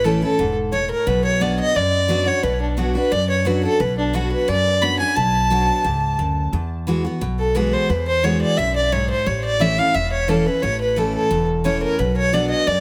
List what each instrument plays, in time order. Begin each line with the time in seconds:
Already playing: upright bass A1, steel-string acoustic guitar A2
0.04 steel-string acoustic guitar E3 A3 C#4 E4, fiddle A4
0.22 steel-string acoustic guitar C#4 E4, fiddle A4
0.39 upright bass E1, steel-string acoustic guitar G#2
0.72 steel-string acoustic guitar A2, fiddle C#5
0.91 fiddle A#4
1.07 upright bass B1, steel-string acoustic guitar B2, fiddle B4
1.25 fiddle C#5
1.40 steel-string acoustic guitar F#3 B3 D4 F#4, fiddle D5
1.60 fiddle D#5
1.75 steel-string acoustic guitar F#2, upright bass F#2, fiddle D5
2.08 steel-string acoustic guitar F#3 B3 D4 F#4
2.26 steel-string acoustic guitar D4 F#4, fiddle C#5
2.43 upright bass B1, steel-string acoustic guitar B2, fiddle B4
2.61 fiddle D4
2.77 steel-string acoustic guitar F#3 B3 D4 F#4, fiddle F#4
2.95 steel-string acoustic guitar D4 F#4, fiddle B4
3.12 steel-string acoustic guitar F#2, upright bass F#2, fiddle D5
3.30 fiddle C#5
3.45 steel-string acoustic guitar F#3 B3 D4 F#4, fiddle B4
3.63 steel-string acoustic guitar D4 F#4, fiddle A4
3.80 upright bass B1, steel-string acoustic guitar B2, fiddle B4
3.98 fiddle D4
4.13 steel-string acoustic guitar F#3 B3 D4 F#4, fiddle F#4
4.32 fiddle B4
4.48 steel-string acoustic guitar F#2, upright bass F#2, fiddle D5
4.82 steel-string acoustic guitar F#3 B3 D4 F#4, fiddle B5
4.99 steel-string acoustic guitar D4 F#4, fiddle G#5
5.16 upright bass B1, steel-string acoustic guitar B2, fiddle A5
5.50 steel-string acoustic guitar F#3 B3 D4 F#4
5.84 upright bass C#2, steel-string acoustic guitar G#2
6.18 upright bass D2, steel-string acoustic guitar F#2
6.53 upright bass E2, steel-string acoustic guitar E2
6.87 steel-string acoustic guitar E3 G#3 B3 F#4
7.04 steel-string acoustic guitar B3 F#4
7.21 upright bass B1, steel-string acoustic guitar B2
7.39 fiddle A4
7.55 steel-string acoustic guitar E3 G#3 B3 F#4, fiddle B4
7.73 fiddle C5
7.89 upright bass E2, steel-string acoustic guitar E2, fiddle B4
8.08 fiddle C5
8.23 steel-string acoustic guitar E3 G#3 B3 F#4, fiddle C#5
8.41 fiddle D5
8.57 upright bass B1, steel-string acoustic guitar F#2, fiddle E5
8.76 fiddle D5
8.92 steel-string acoustic guitar G#2, fiddle C#5
9.10 fiddle C5
9.26 upright bass A1, steel-string acoustic guitar A2, fiddle C#5
9.45 fiddle D5
9.60 steel-string acoustic guitar E3 A3 C#4 E4, fiddle E5
9.78 steel-string acoustic guitar C#4 E4, fiddle F5
9.94 upright bass E1, steel-string acoustic guitar E2, fiddle E5
10.12 fiddle C#5
10.28 steel-string acoustic guitar E3 A3 C#4 E4, fiddle A4
10.46 steel-string acoustic guitar C#4 E4, fiddle B4
10.62 upright bass A1, steel-string acoustic guitar A2, fiddle C#5
10.81 fiddle B4
10.96 steel-string acoustic guitar E3 A3 C#4 E4, fiddle A4
11.14 fiddle A4
11.31 upright bass E1, steel-string acoustic guitar E2
11.64 steel-string acoustic guitar E3 A3 C#4 E4, fiddle C#5
11.83 fiddle A#4
11.99 upright bass B1, steel-string acoustic guitar B2, fiddle B4
12.17 fiddle C#5
12.33 steel-string acoustic guitar F#3 B3 D4 F#4, fiddle D5
12.50 fiddle D#5
12.67 steel-string acoustic guitar F#2, upright bass F#2, fiddle D5